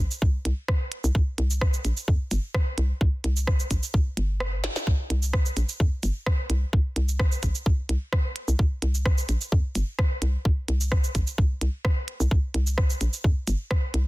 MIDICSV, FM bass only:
0, 0, Header, 1, 2, 480
1, 0, Start_track
1, 0, Tempo, 465116
1, 1187, Time_signature, 4, 2, 24, 8
1, 14525, End_track
2, 0, Start_track
2, 0, Title_t, "FM bass"
2, 0, Program_c, 0, 39
2, 226, Note_on_c, 0, 36, 88
2, 382, Note_off_c, 0, 36, 0
2, 467, Note_on_c, 0, 36, 95
2, 547, Note_off_c, 0, 36, 0
2, 1074, Note_on_c, 0, 36, 107
2, 1145, Note_off_c, 0, 36, 0
2, 1187, Note_on_c, 0, 36, 98
2, 1266, Note_off_c, 0, 36, 0
2, 1427, Note_on_c, 0, 36, 100
2, 1839, Note_off_c, 0, 36, 0
2, 1907, Note_on_c, 0, 34, 87
2, 1986, Note_off_c, 0, 34, 0
2, 2147, Note_on_c, 0, 41, 98
2, 2226, Note_off_c, 0, 41, 0
2, 2388, Note_on_c, 0, 31, 104
2, 2467, Note_off_c, 0, 31, 0
2, 2867, Note_on_c, 0, 36, 98
2, 3023, Note_off_c, 0, 36, 0
2, 3106, Note_on_c, 0, 36, 100
2, 3186, Note_off_c, 0, 36, 0
2, 3346, Note_on_c, 0, 36, 96
2, 3759, Note_off_c, 0, 36, 0
2, 3826, Note_on_c, 0, 34, 85
2, 3906, Note_off_c, 0, 34, 0
2, 4066, Note_on_c, 0, 36, 88
2, 4222, Note_off_c, 0, 36, 0
2, 4305, Note_on_c, 0, 31, 98
2, 4837, Note_off_c, 0, 31, 0
2, 5026, Note_on_c, 0, 36, 97
2, 5106, Note_off_c, 0, 36, 0
2, 5265, Note_on_c, 0, 36, 101
2, 5678, Note_off_c, 0, 36, 0
2, 5745, Note_on_c, 0, 34, 88
2, 5825, Note_off_c, 0, 34, 0
2, 5986, Note_on_c, 0, 41, 93
2, 6066, Note_off_c, 0, 41, 0
2, 6226, Note_on_c, 0, 31, 103
2, 6306, Note_off_c, 0, 31, 0
2, 6705, Note_on_c, 0, 36, 96
2, 6862, Note_off_c, 0, 36, 0
2, 6947, Note_on_c, 0, 36, 99
2, 7026, Note_off_c, 0, 36, 0
2, 7185, Note_on_c, 0, 36, 99
2, 7599, Note_off_c, 0, 36, 0
2, 7666, Note_on_c, 0, 34, 85
2, 7746, Note_off_c, 0, 34, 0
2, 7906, Note_on_c, 0, 36, 88
2, 8062, Note_off_c, 0, 36, 0
2, 8145, Note_on_c, 0, 36, 92
2, 8226, Note_off_c, 0, 36, 0
2, 8752, Note_on_c, 0, 36, 101
2, 8824, Note_off_c, 0, 36, 0
2, 8866, Note_on_c, 0, 36, 99
2, 8946, Note_off_c, 0, 36, 0
2, 9106, Note_on_c, 0, 36, 99
2, 9519, Note_off_c, 0, 36, 0
2, 9586, Note_on_c, 0, 34, 86
2, 9666, Note_off_c, 0, 34, 0
2, 9826, Note_on_c, 0, 41, 95
2, 9906, Note_off_c, 0, 41, 0
2, 10067, Note_on_c, 0, 31, 102
2, 10146, Note_off_c, 0, 31, 0
2, 10545, Note_on_c, 0, 36, 95
2, 10702, Note_off_c, 0, 36, 0
2, 10787, Note_on_c, 0, 36, 97
2, 10866, Note_off_c, 0, 36, 0
2, 11026, Note_on_c, 0, 36, 100
2, 11439, Note_off_c, 0, 36, 0
2, 11506, Note_on_c, 0, 34, 83
2, 11586, Note_off_c, 0, 34, 0
2, 11747, Note_on_c, 0, 36, 86
2, 11903, Note_off_c, 0, 36, 0
2, 11987, Note_on_c, 0, 36, 91
2, 12066, Note_off_c, 0, 36, 0
2, 12593, Note_on_c, 0, 36, 107
2, 12664, Note_off_c, 0, 36, 0
2, 12707, Note_on_c, 0, 36, 101
2, 12786, Note_off_c, 0, 36, 0
2, 12946, Note_on_c, 0, 36, 99
2, 13359, Note_off_c, 0, 36, 0
2, 13427, Note_on_c, 0, 34, 84
2, 13507, Note_off_c, 0, 34, 0
2, 13667, Note_on_c, 0, 41, 94
2, 13747, Note_off_c, 0, 41, 0
2, 13907, Note_on_c, 0, 31, 103
2, 13986, Note_off_c, 0, 31, 0
2, 14386, Note_on_c, 0, 36, 102
2, 14525, Note_off_c, 0, 36, 0
2, 14525, End_track
0, 0, End_of_file